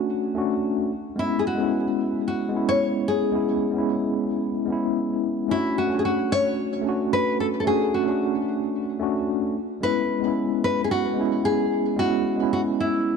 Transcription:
Already playing: A3 C#4 D4 F#4
0.35 A3 C#4 D4 F#4
1.16 G#3 B3 C#4 E4
1.39 G#4
1.47 F#4
1.55 G#3 B3
1.60 C#4 E4
2.28 F#4
2.49 G#3 B3
2.54 C#4 E4
2.69 C#5
3.08 G#4
3.32 G#3 B3 C#4 E4
3.71 G#3 B3
3.76 C#4 E4
4.65 G#3 B3
4.70 C#4 E4
5.48 A3 C#4 D4 E4 F#4
5.78 F#4
5.87 A3 C#4
5.92 D4 F#4
5.99 G#4
6.05 F#4
6.32 C#5
6.81 A3 C#4
6.86 D4 F#4
7.13 B4
7.40 A4
7.60 A4
7.64 A3 C#4 D4 F#4 G#4
7.94 F#4
8.04 A3 C#4
8.08 D4 F#4
9.00 A3 C#4 D4 F#4
9.81 G#3 B3 C#4 E4 B4
10.20 G#3 B3
10.25 C#4 E4
10.64 B4
10.84 G#4
10.91 F#4
11.14 G#3 B3
11.18 C#4 E4
11.45 G#4
11.96 G#3 B3 C#4 E4 F#4
12.36 G#3 B3
12.41 C#4 E4
12.53 F#4
12.80 E4

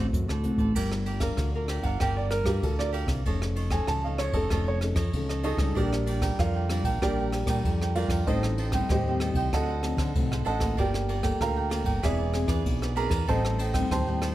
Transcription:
Already playing: D3 A3 C4 F#4
0.13 F#2 A2, kick, closed hi-hat
0.28 D2 A4 C5 D5, cross-stick
0.43 C2 A3 C4 F#4, closed hi-hat
0.56 A1 A4 C5 D5, kick, closed hi-hat
0.75 G1 G3 D4 F4 G4 A#4 D5 F5, kick, crash
0.92 muted cavaquinho stroke, cross-stick
1.06 G4 A#4 D5 F5, ride
1.20 D4 F4 A#4 D5 F5, kick, cross-stick, ride
1.37 D2 D3, kick, cross-stick, ride
1.55 D4 F4 A#4 D5 F5
1.68 G4 A#4 D5 F5, cross-stick, ride
1.81 G1 F5 F#5, kick, ride
1.85 A#4 D5
2.00 G1 G3 D4 F4 G4 A#4 D5 F5 G5, kick, cross-stick, ride
2.17 A#4 D5 F5
2.31 A#4, muted cavaquinho stroke, cross-stick, ride
2.44 G2 D4 F4 G4 A#4 D5 F5, kick, cross-stick, ride
2.48 A#4
2.63 D2 D3 A4, kick, ride
2.79 D4 F4 A#4 D5 F5, cross-stick
2.93 G4 A#4 D5 F5, ride
3.06 C2 A#4 D5 F5, kick, cross-stick, ride
3.26 F1 F3 C#4 D#4 F4 A4 C#5 D#5, kick, ride
3.42 muted cavaquinho stroke, cross-stick
3.56 F4 A4 C#5 D#5, ride
3.71 C#4 D#4 A4 C#5 D#5 G#5, kick, cross-stick, ride
3.87 C#2 F3 A5, kick, cross-stick, ride
4.04 C#4 D#4 A4 C#5 D#5 F5
4.18 F4 A4 C#5 D#5, cross-stick, ride
4.32 F1 C#4 A4 C#5 D#5, kick, ride
4.36 D#4 A4
4.50 F1 F3 F4 A4 C#5 D#5, kick, cross-stick, ride
4.67 A4 C#5 D#5
4.81 C#4 D#4 A4, muted cavaquinho stroke, cross-stick, ride
4.95 F2 A4 C#5 D#5, kick, cross-stick, ride
5.13 C#2 F3 C#4 D#4 A4, kick, ride
5.29 A4 C#5 D#5, cross-stick
5.43 D#4 F4 G#4 A4 C#5 D#5, ride
5.57 C#2 G3 A4 C#5, kick, cross-stick, ride
5.61 D4 F4
5.75 A#1 A#2 D4 G4 A#4 D5 G5, kick, ride
5.92 muted cavaquinho stroke, cross-stick
6.06 D4 A#4 D5 G5, ride
6.21 G3 D4 F4 A#4 D5 G5, kick, cross-stick, ride
6.39 F2 F3 F4 A#4 D5 F5, kick, cross-stick, ride
6.55 A#4 D5 G5
6.70 G3 D4 F4 A#4 D5 G5, cross-stick, ride
6.83 A#1 A#4 D5 G5, kick, ride
7.02 A#1 A#2 G3 D4 F4 G4 A#4 D5 G5, kick, cross-stick, ride
7.19 A#4 D5 G5
7.33 muted cavaquinho stroke, cross-stick, ride
7.46 A#2 G3 D4 F4 A#4 D5 G5, kick, cross-stick, ride
7.65 F2 F3, kick, ride
7.82 A#4 D5 G5, cross-stick
7.95 G3 D4 F4 A#4 D5 F5 G5, ride
8.08 F2 D5 G5, kick, cross-stick, ride
8.13 A#4
8.27 A1 A2 G3 C4 D#4 A4 C5 D#5 G5, kick, ride
8.43 muted cavaquinho stroke, cross-stick
8.58 A4 C5 D#5 G5, ride
8.72 G3 C4 D#4 C5 D#5 G5, kick, cross-stick, ride
8.89 D#2 A2 G4 C5 D#5 G5, kick, cross-stick, ride
9.07 G3 C4 D#4 C5 D#5 G5
9.20 A4 C5 D#5 G5, cross-stick, ride
9.34 C2 D#5 G5, kick, ride
9.38 C5
9.53 D2 D3 F#3 C4 D4 D#4 A4 C5 D#5 F#5 A5, kick, cross-stick, ride
9.69 A4 C5 F#5
9.83 F#3 C4 D#4, muted cavaquinho stroke, cross-stick, ride
9.97 D3 A4 C5 F#5, kick, cross-stick, ride
10.15 C2 A2 F#3 C4 D#4, kick, ride
10.31 A4 C5 F#5, cross-stick
10.45 A1 D4 A4 C5 D#5 F#5 A5, ride
10.60 A#3 F4 A4 C5 F#5, kick, cross-stick, ride
10.77 G1 G3 F4 G4 A#4 D5 G5, kick, ride
10.94 muted cavaquinho stroke, cross-stick
11.08 F4 A#4 D5 G5, ride
11.22 A#3 F4 A4 A#4 D5 G5, kick, cross-stick, ride
11.40 D2 D3 A#4 F5 G5 A#5, kick, cross-stick, ride
11.56 A#4 D5 G5
11.70 A#3 F4 A4 A#4 D5 G5, cross-stick, ride
11.84 G1 A#4 D5 G5, kick, ride
12.03 E1 E3 C4 D4 E4 G#4 B4 D5 E5 G#5, kick, cross-stick, ride
12.18 G#4 B4 D5
12.33 C4 D4 G#4, muted cavaquinho stroke, cross-stick, ride
12.47 E2 G#4 B4 D5, kick, cross-stick, ride
12.66 B1 B2, kick, ride
12.82 G#4 B4 D5, cross-stick
12.96 C4 D4 E4 G#4 A#4 B4 D5 A#5, ride
13.10 E2 G#4 B4 D5, kick, cross-stick, ride
13.28 A1 A2 G3 C4 D#4 A4 C5 D#5 G5 A5, kick, ride
13.45 cross-stick
13.58 A4 C5 D#5 G5, ride
13.73 G3 C4 D#4 C5 D#5 G5, kick, cross-stick, ride
13.91 D#2 A2 C5 G5 A5 C6, kick, cross-stick, ride
14.07 G3 C4 D#4 C5 D#5 G5
14.21 A4 C5 D#5 G5, cross-stick, ride

